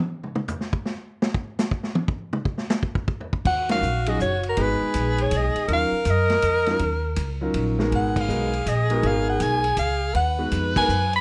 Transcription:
0.23 mid tom
0.35 mid tom
0.48 floor tom, hi-hat pedal
0.61 snare
0.73 kick
0.86 snare
1.22 snare
1.34 kick
1.59 snare, hi-hat pedal
1.71 kick
1.83 snare
1.95 high tom
2.08 kick
2.33 mid tom
2.45 kick
2.58 snare
2.70 snare, hi-hat pedal
2.83 kick
2.95 kick
3.08 kick
3.21 floor tom
3.33 kick
3.45 upright bass D#2, tenor saxophone F#4, soprano saxophone F#5, kick, crash
3.69 grand piano F#3 C#4 D#4 F4 A#4, soprano saxophone F5, snare, ride
3.81 upright bass A#1, hi-hat pedal
4.06 grand piano F#3 C#4 D#4 F4 G#4, soprano saxophone D#5, ride
4.20 upright bass F#1, soprano saxophone C#5, kick, hi-hat pedal
4.43 ride
4.49 soprano saxophone A#4
4.57 upright bass G#1, grand piano G#3 B3 D#4 F#4 B4, tenor saxophone G#4, kick, ride
4.62 soprano saxophone B4
4.81 muted upright bass stroke
4.94 upright bass A#1, kick, hi-hat pedal, ride
5.18 soprano saxophone C#5, ride
5.31 upright bass B1, kick, hi-hat pedal, ride
5.37 soprano saxophone D#5
5.55 muted upright bass stroke, ride
5.68 upright bass D#2, grand piano F#3 C#4 D#4 F4 A#4, tenor saxophone A#4, kick, ride
5.73 soprano saxophone F5
5.92 muted upright bass stroke
6.05 upright bass F#2, kick, hi-hat pedal, ride
6.10 soprano saxophone D#5
6.30 snare, ride
6.42 upright bass F2, kick, hi-hat pedal, ride
6.66 grand piano F#3 C#4 D#4 F4 A#4, snare, ride
6.79 upright bass D#2, kick, ride
7.16 upright bass C#2, kick, hi-hat pedal, ride
7.41 grand piano F#3 C#4 D#4 F4 A#4
7.54 upright bass A#1, kick, ride
7.79 grand piano G#3 B3 D#4 F#4 A#4, snare
7.91 upright bass G#1, tenor saxophone G#4, kick, ride
7.96 soprano saxophone F#5
8.16 kick, crash
8.21 soprano saxophone F5
8.28 upright bass B1, grand piano G#3 B3 D#4 F#4 A#4, hi-hat pedal
8.53 ride
8.66 upright bass A#1, soprano saxophone D#5, kick, hi-hat pedal, ride
8.90 grand piano G#3 B3 D#4 F#4 A#4, ride
9.03 upright bass G#1, grand piano G#3 B3 D#4 F#4 A#4, soprano saxophone F5, kick, ride
9.30 soprano saxophone F#5
9.40 upright bass B1, soprano saxophone G#5, kick, hi-hat pedal, ride
9.64 ride
9.77 upright bass C#2, soprano saxophone F5, kick, hi-hat pedal, ride
10.14 upright bass D#2, tenor saxophone B4, soprano saxophone F#5, kick, ride
10.39 grand piano G#3 B3 D#4 F#4 B4
10.51 upright bass F2, kick, hi-hat pedal, ride
10.76 grand piano G#3 B3 D#4 F#4 A#4, soprano saxophone G#5, kick, crash
10.88 upright bass F#2, hi-hat pedal
11.13 soprano saxophone B5, ride

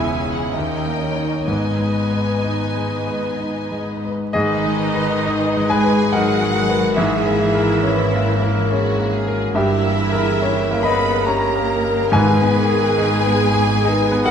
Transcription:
Already playing: double bass section E1, grand piano C#2 B3 E4 G#4, cello section E2, viola section C#4 E4, violin section G#4 C#5 G#5, clarinet E5
0.26 grand piano G#4
0.32 violin section F#5
0.53 double bass section D#2, cello section D#2, grand piano D#2, viola section D#4, violin section A#4 D#5 G5, clarinet D#5
0.86 grand piano A#3
1.00 clarinet C#5
1.15 grand piano D#4 C#5
1.46 double bass section G#1, cello section G#2, grand piano G#2, viola section B3 D#4, violin section B4 D#5 G#5, clarinet B4
1.78 grand piano G#3
2.12 grand piano B4
2.44 grand piano D#4
2.77 grand piano G#3
3.07 grand piano B4
3.40 grand piano D#4
3.72 grand piano G#3
4.05 grand piano B4
4.33 double bass section G#1, grand piano G#2 G#4 D#5, cello section D#3, viola section D#4, violin section B4 D#5
4.66 grand piano G#3
4.95 grand piano B4
5.23 grand piano D#4, violin section G#4, french horn section B4
5.57 grand piano G#3
5.69 cello section G#3, viola section G#4, grand piano B4 G#5, violin section G#5
5.84 grand piano B4
6.13 cello section F#3, grand piano D#4 A#4 F#5, viola section F#4, french horn section G#4, violin section F#5
6.42 grand piano G#3
6.55 french horn section A#4
6.69 grand piano B4
6.96 grand piano G#2 G#4 E5, cello section E3, viola section E4, violin section G#4 E5, french horn section G#4
7.26 grand piano A#3
7.55 grand piano A#4
7.83 grand piano C#4, violin section E4, french horn section B4
8.13 grand piano A#3
8.25 french horn section A#4
8.42 grand piano A#4
8.69 grand piano C#4, violin section F#4, french horn section G#4
8.99 grand piano A#3
9.13 french horn section F#4, violin section G#4
9.28 grand piano A#4
9.54 double bass section G1, grand piano G2 G4 E5, cello section E3, viola section E4, french horn section G4, violin section A#4 E5
9.84 grand piano A#3
10.00 french horn section G#4
10.12 grand piano A#4
10.41 grand piano C#4, violin section G4, french horn section A#4
10.71 grand piano A#3
10.81 cello section B3, violin section G4 B5, viola section B4, grand piano D#5 B5
10.86 french horn section G#4
10.99 grand piano A#4
11.25 cello section A#3, grand piano C#4 C#5 A#5, french horn section G4, viola section A#4, violin section A#5
11.56 grand piano A#3
11.84 grand piano A#4
12.11 double bass section G#1, grand piano G#2 B4 G#5, timpani G#2, cello section G#3, viola section G#4, violin section B4 G#5
12.15 french horn section B4
12.42 grand piano B3
12.55 french horn section A#4
12.69 grand piano G#4
12.98 grand piano D#4, violin section B4, french horn section B4
13.26 grand piano B3
13.42 french horn section G#4
13.54 grand piano G#4
13.82 grand piano D#4, violin section A#4, french horn section B4
14.12 grand piano B3
14.24 cello section F#3, viola section F#4, violin section G#4 F#5, grand piano A#4 F#5

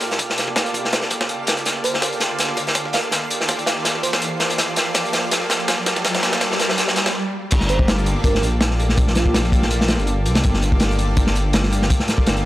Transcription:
Already playing: synth texture F5 F6, riser
0.01 analog synth pad A#3 F4 G4 A4 D5, snare, closed hi-hat, open hi-hat
0.11 snare, closed hi-hat
0.19 analog synth pad A#3 F4 G4 A4 D5, kick, closed hi-hat
0.30 snare
0.38 snare, closed hi-hat
0.48 kick
0.56 snare, closed hi-hat
0.66 snare, closed hi-hat
0.74 kick, closed hi-hat
0.85 snare
0.93 snare, closed hi-hat
1.02 snare
1.11 kick, closed hi-hat
1.20 snare
1.29 analog synth pad A#3 F4 G4 A4 D5, closed hi-hat
1.47 snare, closed hi-hat
1.57 snare, closed hi-hat
1.66 analog synth pad A#3 F4 G4 A4 D5, synth texture C6, snare, closed hi-hat
1.84 fm electric piano C5, closed hi-hat
1.94 snare
2.02 snare, closed hi-hat
2.12 closed hi-hat
2.20 snare, closed hi-hat
2.39 snare, closed hi-hat
2.49 snare
2.57 snare, closed hi-hat
2.67 snare, closed hi-hat
2.75 snare, closed hi-hat
2.85 snare
2.93 analog synth pad A#3 F4 G4 A4 D5, fm electric piano F5, snare, closed hi-hat, open hi-hat
3.04 closed hi-hat
3.11 analog synth pad A#3 F4 G4 A4 D5, snare, closed hi-hat
3.30 closed hi-hat
3.41 snare
3.48 snare, closed hi-hat
3.59 snare, closed hi-hat
3.66 fm electric piano F5, snare, closed hi-hat
3.85 snare, closed hi-hat
3.95 snare
4.03 fm electric piano C5, closed hi-hat
4.13 snare, closed hi-hat
4.22 closed hi-hat
4.40 analog synth pad A#3 F4 G4 A4 D5, snare, closed hi-hat
4.50 snare, closed hi-hat
4.58 analog synth pad A#3 F4 G4 A4 D5, snare, closed hi-hat
4.76 snare, closed hi-hat
4.94 snare, closed hi-hat
5.05 closed hi-hat
5.13 snare, closed hi-hat
5.31 snare, closed hi-hat
5.42 snare
5.50 snare, closed hi-hat
5.60 closed hi-hat
5.68 snare, closed hi-hat
5.78 snare
5.86 analog synth pad A#3 F4 G4 A4 D5, snare, closed hi-hat
5.96 snare, closed hi-hat
6.05 analog synth pad A#3 F4 G4 A4 D5, snare, closed hi-hat
6.15 snare, closed hi-hat
6.23 snare, closed hi-hat
6.32 snare, closed hi-hat
6.41 snare, closed hi-hat
6.51 snare
6.59 snare, closed hi-hat
6.69 snare
6.78 snare, closed hi-hat
6.88 snare
6.96 snare, closed hi-hat
7.06 snare, closed hi-hat
7.51 detuned saw bass G1, analog synth pad A#3 F4 G4 A4 D5, kick, closed hi-hat, crash
7.61 snare
7.69 fm electric piano C5, closed hi-hat
7.79 kick
7.88 snare, closed hi-hat
7.98 closed hi-hat
8.06 closed hi-hat
8.24 detuned saw bass G1, fm electric piano A#4, kick, closed hi-hat
8.35 snare
8.43 detuned saw bass A#1, closed hi-hat
8.61 snare, closed hi-hat
8.71 snare
8.79 analog synth pad A#3 F4 G4 A4 D5, closed hi-hat
8.89 snare
8.97 analog synth pad A#3 F4 G4 A4 D5, kick, closed hi-hat
9.08 snare
9.15 fm electric piano F4, snare, closed hi-hat
9.26 kick
9.34 snare, closed hi-hat
9.45 closed hi-hat
9.52 kick, closed hi-hat
9.62 snare
9.71 closed hi-hat
9.81 snare
9.88 snare, closed hi-hat
9.99 detuned saw bass G1, closed hi-hat
10.07 closed hi-hat
10.25 detuned saw bass C2, analog synth pad A#3 F4 G4 A4 D5, closed hi-hat
10.35 snare, closed hi-hat
10.43 detuned saw bass G1, analog synth pad A#3 F4 G4 A4 D5, kick, closed hi-hat
10.54 snare
10.62 closed hi-hat
10.72 detuned saw bass G1, kick
10.80 snare, closed hi-hat
10.91 closed hi-hat
10.99 closed hi-hat
11.17 kick, closed hi-hat
11.27 snare
11.36 closed hi-hat
11.53 snare, closed hi-hat
11.63 snare
11.72 analog synth pad A#3 F4 G4 A4 D5, closed hi-hat
11.82 snare
11.90 analog synth pad A#3 F4 G4 A4 D5, kick, closed hi-hat
12.00 snare
12.08 snare, closed hi-hat
12.18 kick
12.26 detuned saw bass G1, snare, closed hi-hat
12.36 closed hi-hat

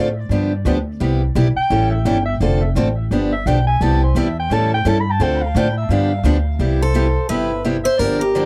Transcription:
Already playing: upright bass A2
0.29 upright bass G2, steel-string acoustic guitar D3 F3 B3 D4 G4
0.65 upright bass D2, steel-string acoustic guitar D3 F3 B3 D4 G4
1.00 upright bass C2, steel-string acoustic guitar C3 G3 B3 E4 G4
1.35 upright bass B1, steel-string acoustic guitar C3 G3 B3 E4 G4
1.56 soprano saxophone G5, muted upright bass stroke
1.70 upright bass A1, steel-string acoustic guitar E3 G3 C#4 E4 A4
1.91 soprano saxophone E5
2.05 upright bass G1, steel-string acoustic guitar E3 G3 C#4 E4 A4, soprano saxophone G5
2.26 soprano saxophone E5
2.40 upright bass F1, steel-string acoustic guitar D3 A3 C4 F4 A4
2.75 upright bass A1, steel-string acoustic guitar D3 A3 C4 F4 A4
3.11 upright bass G1, steel-string acoustic guitar D3 F3 B3 D4 G4
3.32 soprano saxophone E5
3.46 upright bass B1, steel-string acoustic guitar D3 F3 B3 D4 G4, soprano saxophone G5
3.67 soprano saxophone G#5
3.81 upright bass C2, steel-string acoustic guitar C3 G3 B3 E4 G4, soprano saxophone A5
4.04 soprano saxophone C5
4.15 upright bass E2, steel-string acoustic guitar C3 G3 B3 E4 G4, soprano saxophone E5
4.40 soprano saxophone G5
4.50 upright bass A2, steel-string acoustic guitar E3 G3 C#4 E4 A4, soprano saxophone A5
4.74 soprano saxophone G5
4.85 upright bass G2, steel-string acoustic guitar E3 G3 C#4 E4 A4, soprano saxophone A5
5.00 soprano saxophone B5
5.11 soprano saxophone A5
5.20 upright bass D2, steel-string acoustic guitar D3 A3 C4 F4 A4, soprano saxophone G5
5.42 soprano saxophone F5
5.55 upright bass A2, steel-string acoustic guitar D3 A3 C4 F4 A4, soprano saxophone G5
5.77 soprano saxophone E5
5.89 upright bass G2, steel-string acoustic guitar D3 F3 B3 D4 G4, soprano saxophone F5
6.23 upright bass D2, steel-string acoustic guitar D3 F3 B3 D4 G4
6.59 upright bass C2, steel-string acoustic guitar C3 G3 B3 E4 G4
6.82 steel-string acoustic guitar A4, soprano saxophone C5
6.94 steel-string acoustic guitar C3 G3 B3 E4 G4
7.29 upright bass G1, steel-string acoustic guitar C3 G3 B3 E4 G4 B4, soprano saxophone E5
7.64 steel-string acoustic guitar C3 G3 B3 E4 G4
7.84 steel-string acoustic guitar C5, soprano saxophone E5
7.98 upright bass G1, steel-string acoustic guitar D3 F3 A#3 D4 G4 A#4, soprano saxophone D5
8.19 steel-string acoustic guitar G4, soprano saxophone A#4
8.35 steel-string acoustic guitar D3 F3 A#3 D4 G4

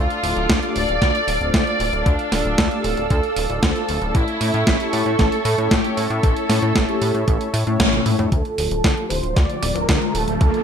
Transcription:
Already playing: analog polysynth A3 D4 F4 A4, violin section F4, analog synth pad A4 D5 F5 D6
0.10 closed hi-hat
0.23 analog synth bass D1, analog polysynth A3 D4 F4 A4, open hi-hat
0.36 analog synth bass D1, closed hi-hat
0.49 analog synth bass D2, kick, snare, closed hi-hat
0.63 analog polysynth A3 D4 F4 G4, closed hi-hat
0.75 analog synth bass D1, violin section D5, open hi-hat
0.89 analog synth bass D1, closed hi-hat
1.02 analog synth bass D2, analog polysynth A3 D4 F4 A4, kick, snare, closed hi-hat
1.15 closed hi-hat
1.28 analog synth bass D1, open hi-hat
1.41 analog synth bass D1, analog polysynth A3 D4 F4 C5, closed hi-hat
1.53 analog synth bass D2, violin section D5, kick, snare, closed hi-hat
1.67 closed hi-hat
1.80 analog synth bass D1, open hi-hat
1.93 analog synth bass D1, analog polysynth A3 A4, closed hi-hat
2.05 analog synth bass D2, violin section D4, analog synth pad E6, kick, closed hi-hat
2.19 closed hi-hat
2.32 analog synth bass D1, analog polysynth A3 D4 F4 A4, snare, open hi-hat
2.45 analog synth bass D1, closed hi-hat
2.58 analog synth bass D2, kick, snare, closed hi-hat
2.71 analog polysynth A3 D4 G4, closed hi-hat
2.83 analog synth bass D1, violin section A4, open hi-hat
2.97 analog synth bass D1, closed hi-hat
3.10 analog synth bass D2, analog polysynth A3 D4 F4, kick, closed hi-hat
3.23 closed hi-hat
3.36 analog synth bass D1, open hi-hat
3.50 analog synth bass D1, analog polysynth A3 D4 F4 C5, closed hi-hat
3.62 analog synth bass D2, violin section A4, kick, snare, closed hi-hat
3.76 closed hi-hat
3.89 analog synth bass D1, open hi-hat
4.02 analog synth bass D1, analog polysynth A3 E4 A4, closed hi-hat
4.14 analog synth bass A1, violin section E4, analog synth pad A4 C#5 E5 C#6, kick, closed hi-hat
4.28 closed hi-hat
4.41 analog synth bass A2, analog polysynth A3 C#4 E4 A4, open hi-hat
4.54 analog synth bass A2, closed hi-hat
4.67 analog synth bass A1, kick, snare, closed hi-hat
4.80 analog polysynth A3 C#4 E4 G4, closed hi-hat
4.92 analog synth bass A2, violin section A4, open hi-hat
5.06 analog synth bass A2, closed hi-hat
5.19 analog synth bass A1, analog polysynth A3 C#4 E4 A4, kick, snare, closed hi-hat
5.32 closed hi-hat
5.45 analog synth bass A2, open hi-hat
5.58 analog synth bass A2, analog polysynth A3 C#4 E4 C#5, closed hi-hat
5.70 analog synth bass A1, violin section G4, kick, snare, closed hi-hat
5.84 closed hi-hat
5.97 analog synth bass A2, violin section A4, open hi-hat
6.10 analog synth bass A2, analog polysynth A3 C#4 E4 A4, closed hi-hat
6.23 analog synth bass A1, kick, closed hi-hat
6.37 closed hi-hat
6.49 analog synth bass A2, analog polysynth A3 C#4 E4 A4, snare, open hi-hat
6.62 analog synth bass A2, closed hi-hat
6.75 analog synth bass A1, kick, snare, closed hi-hat
6.88 analog polysynth A3 C#4 E4 G4, closed hi-hat
7.01 analog synth bass A2, open hi-hat
7.14 analog synth bass A2, closed hi-hat
7.28 analog synth bass A1, analog polysynth A3 C#4 E4, kick, closed hi-hat
7.41 closed hi-hat
7.54 analog synth bass A2, open hi-hat
7.67 analog synth bass A2, analog polysynth A3 C#4 E4 C#5, closed hi-hat
7.80 analog synth bass A1, kick, snare, closed hi-hat
7.93 closed hi-hat, high tom
8.06 analog synth bass A2, open hi-hat, mid tom
8.19 analog synth bass A2, analog polysynth A3 D4, closed hi-hat, mid tom
8.32 analog synth bass D2, analog synth pad D3 F3 F4, violin section A4 A5, kick, closed hi-hat, riser
8.45 closed hi-hat
8.58 analog synth bass D1, analog polysynth A3 D4 F4 A4, open hi-hat
8.71 analog synth bass D1, violin section A4 A5, closed hi-hat
8.84 analog synth bass D2, kick, snare, closed hi-hat
8.97 analog polysynth A3 D4 F4 G4, closed hi-hat
9.10 analog synth bass D1, violin section C5 C6, open hi-hat, high tom
9.23 analog synth bass D1, closed hi-hat
9.36 analog synth bass D2, analog polysynth A3 F4 A4, violin section D5 D6, kick, snare, closed hi-hat
9.50 closed hi-hat
9.62 analog synth bass D1, open hi-hat, high tom
9.75 analog synth bass D1, analog polysynth F3 D4 F4, violin section A#4 A#5, closed hi-hat, high tom
9.89 analog synth bass D2, kick, snare, closed hi-hat
10.02 closed hi-hat, high tom
10.15 analog synth bass D1, violin section A4 A5, open hi-hat
10.28 analog synth bass D1, analog polysynth D4, closed hi-hat
10.41 analog synth bass D2, violin section A4 A5, kick, closed hi-hat
10.54 closed hi-hat

